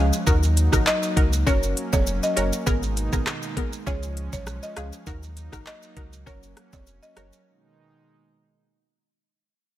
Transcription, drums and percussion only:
0.13 shaker medium
0.13 maracas medium
0.27 kick medium
0.27 shaker medium
0.27 maracas medium
0.43 shaker medium
0.43 maracas soft
0.57 closed hi-hat medium
0.57 maracas soft
0.57 shaker medium
0.73 kick medium
0.73 cross-stick medium
0.73 maracas medium
0.73 shaker medium
0.87 clap loud
0.87 maracas medium
0.87 shaker medium
1.03 shaker medium
1.03 maracas medium
1.17 kick loud
1.17 closed hi-hat medium
1.17 shaker soft
1.33 shaker medium
1.33 maracas medium
1.47 kick loud
1.47 shaker medium
1.47 maracas medium
1.63 shaker medium
1.63 maracas medium
1.77 closed hi-hat medium
1.77 shaker soft
1.93 kick medium
1.93 high timbale medium
1.93 shaker medium
1.93 maracas medium
2.07 shaker medium
2.07 maracas medium
2.23 shaker medium
2.23 maracas medium
2.37 closed hi-hat medium
2.37 shaker medium
2.37 maracas medium
2.53 maracas medium
2.53 shaker medium
2.67 kick medium
2.67 shaker medium
2.67 maracas medium
2.83 shaker medium
2.83 maracas soft
2.97 closed hi-hat medium
2.97 maracas soft
2.97 shaker medium
3.13 kick medium
3.13 maracas medium
3.13 shaker medium
3.27 cross-stick loud
3.27 clap medium
3.27 maracas medium
3.27 shaker medium
3.42 maracas medium
3.42 shaker medium
3.57 kick loud
3.57 closed hi-hat medium
3.57 shaker soft
3.73 maracas medium
3.73 shaker medium
3.87 kick loud
3.87 shaker medium
3.87 maracas medium
4.03 maracas medium
4.03 shaker medium
4.17 closed hi-hat medium
4.17 shaker soft
4.33 kick medium
4.33 shaker medium
4.33 maracas medium
4.47 cross-stick loud
4.47 shaker medium
4.47 maracas medium
4.63 shaker medium
4.63 maracas medium
4.77 cross-stick loud
4.77 closed hi-hat medium
4.77 shaker medium
4.77 maracas medium
4.93 shaker medium
4.93 maracas medium
5.06 kick medium
5.06 shaker medium
5.06 maracas medium
5.23 shaker medium
5.23 maracas soft
5.37 closed hi-hat medium
5.37 shaker medium
5.37 maracas medium
5.53 kick medium
5.53 cross-stick loud
5.53 maracas medium
5.53 shaker medium
5.66 clap loud
5.66 shaker medium
5.66 maracas medium
5.82 shaker medium
5.82 maracas medium
5.97 kick loud
5.97 closed hi-hat medium
5.97 shaker soft
6.13 shaker medium
6.13 maracas medium
6.27 kick loud
6.27 shaker medium
6.27 maracas medium
6.43 shaker medium
6.43 maracas medium
6.57 cross-stick medium
6.57 closed hi-hat medium
6.57 shaker soft
6.73 kick medium
6.73 high timbale medium
6.73 shaker medium
6.73 maracas medium
6.87 shaker medium
6.87 maracas medium
7.03 shaker medium
7.03 maracas medium
7.17 cross-stick loud
7.17 closed hi-hat medium
7.17 shaker medium
7.17 maracas medium
7.33 shaker medium
7.33 maracas medium

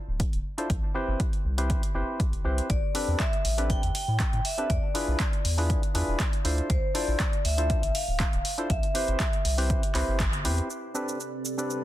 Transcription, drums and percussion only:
0.20 kick loud
0.20 closed hi-hat medium
0.33 closed hi-hat soft
0.58 closed hi-hat soft
0.70 kick loud
0.70 closed hi-hat medium
1.20 kick loud
1.20 closed hi-hat medium
1.33 closed hi-hat soft
1.58 closed hi-hat soft
1.70 kick loud
1.70 closed hi-hat medium
1.83 closed hi-hat soft
2.20 kick loud
2.20 closed hi-hat medium
2.33 closed hi-hat soft
2.58 closed hi-hat soft
2.70 kick loud
2.70 closed hi-hat medium
2.95 open hi-hat loud
3.20 kick loud
3.20 clap loud
3.20 closed hi-hat medium
3.33 closed hi-hat soft
3.45 open hi-hat loud
3.58 closed hi-hat soft
3.70 kick loud
3.70 closed hi-hat medium
3.83 closed hi-hat soft
3.95 open hi-hat loud
4.20 kick loud
4.20 clap loud
4.20 closed hi-hat medium
4.33 closed hi-hat soft
4.45 open hi-hat loud
4.58 closed hi-hat soft
4.70 kick loud
4.70 closed hi-hat medium
4.95 open hi-hat loud
5.20 kick loud
5.20 clap loud
5.20 closed hi-hat medium
5.33 closed hi-hat soft
5.45 open hi-hat loud
5.58 open hi-hat medium
5.70 kick loud
5.70 closed hi-hat medium
5.83 closed hi-hat soft
5.95 open hi-hat loud
6.20 kick loud
6.20 clap loud
6.20 closed hi-hat medium
6.33 closed hi-hat soft
6.45 open hi-hat loud
6.58 closed hi-hat soft
6.70 kick loud
6.70 closed hi-hat medium
6.95 open hi-hat medium
7.20 kick loud
7.20 clap loud
7.20 closed hi-hat medium
7.33 closed hi-hat soft
7.45 open hi-hat loud
7.58 closed hi-hat medium
7.70 kick loud
7.70 closed hi-hat medium
7.83 closed hi-hat medium
7.95 open hi-hat loud
8.20 kick loud
8.20 clap loud
8.20 closed hi-hat medium
8.33 closed hi-hat soft
8.45 open hi-hat loud
8.58 closed hi-hat soft
8.70 kick loud
8.70 closed hi-hat medium
8.83 closed hi-hat soft
8.95 open hi-hat loud
9.08 closed hi-hat soft
9.20 kick loud
9.20 clap loud
9.20 closed hi-hat medium
9.33 closed hi-hat soft
9.45 open hi-hat loud
9.58 open hi-hat medium
9.70 kick loud
9.70 closed hi-hat medium
9.83 closed hi-hat medium
9.95 clap medium
9.95 open hi-hat loud
10.20 kick loud
10.20 clap loud
10.20 closed hi-hat medium
10.33 closed hi-hat soft
10.45 open hi-hat loud
10.58 closed hi-hat soft
10.70 shaker soft
10.95 shaker medium
11.09 shaker soft
11.20 shaker soft
11.45 shaker medium
11.59 shaker soft
11.70 shaker soft

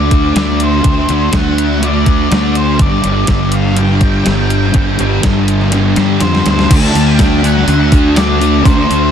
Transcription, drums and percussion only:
0.11 kick medium
0.11 closed hi-hat medium
0.36 snare loud
0.36 closed hi-hat medium
0.60 closed hi-hat medium
0.84 kick loud
0.84 closed hi-hat medium
1.09 closed hi-hat medium
1.33 kick medium
1.33 snare loud
1.33 closed hi-hat loud
1.58 closed hi-hat medium
1.83 closed hi-hat loud
2.06 kick medium
2.06 closed hi-hat medium
2.32 snare loud
2.32 closed hi-hat loud
2.55 closed hi-hat medium
2.79 kick loud
2.79 closed hi-hat loud
3.04 closed hi-hat medium
3.27 kick loud
3.27 snare loud
3.27 closed hi-hat loud
3.52 closed hi-hat medium
3.77 closed hi-hat loud
4.01 kick medium
4.01 closed hi-hat medium
4.26 snare loud
4.26 closed hi-hat loud
4.50 closed hi-hat medium
4.74 kick loud
4.74 closed hi-hat medium
4.99 closed hi-hat medium
5.23 kick medium
5.23 snare loud
5.23 closed hi-hat loud
5.48 closed hi-hat medium
5.61 snare soft
5.72 snare medium
5.72 closed hi-hat loud
5.96 snare medium
5.96 closed hi-hat medium
6.21 snare medium
6.21 closed hi-hat loud
6.35 snare medium
6.46 snare medium
6.46 closed hi-hat medium
6.59 snare medium
6.71 kick loud
6.71 open hi-hat medium
6.71 crash loud
6.95 open hi-hat medium
7.19 kick loud
7.19 snare loud
7.19 open hi-hat loud
7.44 open hi-hat medium
7.57 snare soft
7.68 open hi-hat medium
7.92 kick loud
7.92 open hi-hat medium
8.16 snare loud
8.16 open hi-hat medium
8.41 open hi-hat medium
8.65 kick loud
8.65 open hi-hat medium
8.91 open hi-hat medium

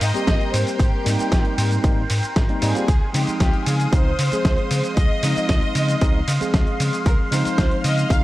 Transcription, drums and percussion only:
0.01 open hi-hat loud
0.01 ride medium
0.01 cabasa medium
0.15 closed hi-hat medium
0.15 cabasa soft
0.27 kick loud
0.27 snare loud
0.27 closed hi-hat medium
0.27 ride medium
0.27 cabasa soft
0.41 closed hi-hat soft
0.54 open hi-hat loud
0.54 ride medium
0.54 cabasa medium
0.67 closed hi-hat medium
0.67 cabasa soft
0.80 kick loud
0.80 closed hi-hat medium
0.80 ride medium
0.80 cabasa soft
1.06 open hi-hat loud
1.06 ride medium
1.06 cabasa medium
1.19 closed hi-hat medium
1.19 cabasa soft
1.32 kick loud
1.32 snare loud
1.32 closed hi-hat medium
1.32 ride medium
1.32 cabasa soft
1.45 closed hi-hat soft
1.58 open hi-hat loud
1.58 ride medium
1.58 cabasa medium
1.71 closed hi-hat soft
1.71 cabasa soft
1.84 kick loud
1.84 closed hi-hat medium
1.84 ride medium
1.84 cabasa soft
2.10 open hi-hat loud
2.10 ride medium
2.10 cabasa medium
2.23 closed hi-hat soft
2.23 cabasa soft
2.36 kick loud
2.36 snare loud
2.36 closed hi-hat medium
2.36 ride medium
2.36 cabasa soft
2.49 closed hi-hat soft
2.62 open hi-hat loud
2.62 ride medium
2.62 cabasa medium
2.75 closed hi-hat soft
2.75 cabasa soft
2.88 kick loud
2.88 closed hi-hat medium
2.88 ride medium
2.88 cabasa soft
3.14 open hi-hat loud
3.14 ride medium
3.14 cabasa medium
3.27 closed hi-hat medium
3.27 cabasa soft
3.40 kick loud
3.40 snare loud
3.40 closed hi-hat medium
3.40 ride medium
3.40 cabasa soft
3.53 closed hi-hat soft
3.66 open hi-hat loud
3.66 ride medium
3.66 cabasa medium
3.80 closed hi-hat soft
3.80 cabasa soft
3.93 kick loud
3.93 closed hi-hat medium
3.93 ride medium
3.93 cabasa soft
4.19 open hi-hat loud
4.19 ride medium
4.19 cabasa medium
4.32 closed hi-hat medium
4.32 cabasa soft
4.45 kick loud
4.45 snare loud
4.45 closed hi-hat medium
4.45 ride medium
4.45 cabasa soft
4.58 closed hi-hat soft
4.71 open hi-hat loud
4.71 ride medium
4.71 cabasa medium
4.84 closed hi-hat medium
4.84 cabasa soft
4.97 kick loud
4.97 closed hi-hat medium
4.97 ride medium
4.97 cabasa soft
5.23 open hi-hat loud
5.23 ride medium
5.23 cabasa medium
5.36 closed hi-hat medium
5.36 cabasa soft
5.49 kick loud
5.49 snare loud
5.49 closed hi-hat medium
5.49 ride medium
5.49 cabasa soft
5.62 closed hi-hat soft
5.75 open hi-hat loud
5.75 ride medium
5.75 cabasa medium
5.88 closed hi-hat medium
5.88 cabasa soft
6.01 kick loud
6.01 closed hi-hat medium
6.01 ride medium
6.01 cabasa soft
6.28 open hi-hat loud
6.28 ride medium
6.28 cabasa medium
6.41 closed hi-hat medium
6.41 cabasa soft
6.54 kick loud
6.54 snare loud
6.54 closed hi-hat medium
6.54 ride medium
6.54 cabasa soft
6.67 closed hi-hat soft
6.80 open hi-hat loud
6.80 ride medium
6.80 cabasa medium
6.93 closed hi-hat medium
6.93 cabasa soft
7.06 kick loud
7.06 closed hi-hat medium
7.06 ride medium
7.06 cabasa soft
7.32 open hi-hat loud
7.32 ride medium
7.32 cabasa medium
7.45 closed hi-hat medium
7.45 cabasa soft
7.58 kick loud
7.58 snare loud
7.58 closed hi-hat medium
7.58 ride medium
7.58 cabasa soft
7.71 closed hi-hat soft
7.84 open hi-hat loud
7.84 ride medium
7.84 cabasa medium
7.98 closed hi-hat medium
7.98 cabasa soft
8.10 kick loud
8.10 closed hi-hat medium
8.10 ride medium
8.10 cabasa soft

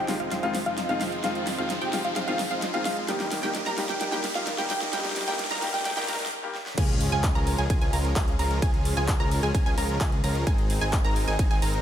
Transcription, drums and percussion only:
0.08 snare medium
0.08 open hi-hat medium
0.20 closed hi-hat soft
0.31 snare medium
0.31 closed hi-hat medium
0.43 closed hi-hat soft
0.55 snare medium
0.55 open hi-hat loud
0.66 closed hi-hat soft
0.78 snare medium
0.78 closed hi-hat medium
0.89 closed hi-hat soft
1.01 snare medium
1.01 open hi-hat loud
1.12 closed hi-hat soft
1.24 snare medium
1.24 closed hi-hat medium
1.35 closed hi-hat soft
1.47 snare medium
1.47 open hi-hat loud
1.58 closed hi-hat soft
1.70 snare medium
1.70 closed hi-hat medium
1.81 closed hi-hat soft
1.93 snare medium
1.93 open hi-hat medium
2.05 closed hi-hat soft
2.16 snare medium
2.16 closed hi-hat medium
2.28 closed hi-hat soft
2.39 snare medium
2.39 open hi-hat loud
2.51 closed hi-hat soft
2.62 snare medium
2.62 closed hi-hat medium
2.74 closed hi-hat soft
2.85 snare medium
2.85 open hi-hat medium
2.97 closed hi-hat soft
3.08 snare medium
3.08 closed hi-hat medium
3.20 snare medium
3.20 closed hi-hat soft
3.31 snare medium
3.31 open hi-hat loud
3.43 snare medium
3.43 closed hi-hat soft
3.55 snare medium
3.55 closed hi-hat medium
3.66 snare medium
3.66 closed hi-hat soft
3.78 snare medium
3.78 open hi-hat medium
3.89 snare medium
3.89 closed hi-hat soft
4.01 snare loud
4.01 closed hi-hat loud
4.12 snare medium
4.12 closed hi-hat soft
4.24 snare loud
4.24 open hi-hat loud
4.35 snare medium
4.35 closed hi-hat soft
4.47 snare loud
4.47 closed hi-hat loud
4.58 snare medium
4.58 closed hi-hat soft
4.70 snare loud
4.70 open hi-hat medium
4.81 snare medium
4.81 closed hi-hat soft
4.93 snare loud
4.93 closed hi-hat loud
4.99 snare medium
5.04 snare medium
5.04 closed hi-hat soft
5.10 snare medium
5.16 snare loud
5.16 open hi-hat loud
5.22 snare medium
5.28 snare medium
5.28 closed hi-hat soft
5.33 snare medium
5.39 snare loud
5.39 closed hi-hat loud
5.45 snare medium
5.51 snare medium
5.51 closed hi-hat soft
5.56 snare medium
5.62 snare loud
5.62 open hi-hat medium
5.68 snare medium
5.74 snare medium
5.74 closed hi-hat soft
5.80 snare medium
5.85 snare loud
5.85 closed hi-hat loud
5.91 snare medium
5.97 snare loud
5.97 closed hi-hat soft
6.03 snare loud
6.08 snare loud
6.08 open hi-hat loud
6.14 snare loud
6.20 snare medium
6.20 closed hi-hat soft
6.26 snare loud
6.55 snare medium
6.66 snare medium
6.78 kick loud
6.78 closed hi-hat loud
6.78 crash loud
6.78 ride medium
6.89 closed hi-hat soft
7.01 open hi-hat loud
7.12 closed hi-hat soft
7.24 kick loud
7.24 clap loud
7.24 closed hi-hat loud
7.24 ride medium
7.35 closed hi-hat soft
7.47 open hi-hat medium
7.58 closed hi-hat soft
7.70 kick loud
7.70 closed hi-hat medium
7.70 ride medium
7.82 closed hi-hat soft
7.93 open hi-hat loud
8.05 closed hi-hat soft
8.16 kick loud
8.16 clap loud
8.16 closed hi-hat loud
8.16 ride medium
8.28 closed hi-hat soft
8.39 open hi-hat loud
8.51 closed hi-hat soft
8.62 kick loud
8.62 closed hi-hat loud
8.62 ride medium
8.74 closed hi-hat soft
8.85 open hi-hat loud
8.97 closed hi-hat soft
9.08 kick loud
9.08 clap loud
9.08 closed hi-hat medium
9.08 ride medium
9.20 closed hi-hat soft
9.31 open hi-hat medium
9.43 closed hi-hat soft
9.55 kick loud
9.55 closed hi-hat loud
9.55 ride medium
9.66 closed hi-hat soft
9.78 open hi-hat loud
9.89 closed hi-hat soft
10.01 kick loud
10.01 clap loud
10.01 closed hi-hat medium
10.01 ride medium
10.12 closed hi-hat soft
10.24 open hi-hat loud
10.35 closed hi-hat soft
10.47 kick loud
10.47 closed hi-hat medium
10.47 ride medium
10.58 closed hi-hat soft
10.70 open hi-hat loud
10.81 closed hi-hat soft
10.93 kick loud
10.93 clap loud
10.93 closed hi-hat medium
10.93 ride medium
11.05 closed hi-hat soft
11.16 open hi-hat medium
11.28 closed hi-hat soft
11.39 kick loud
11.39 closed hi-hat medium
11.39 ride medium
11.51 closed hi-hat soft
11.62 open hi-hat loud
11.74 closed hi-hat soft

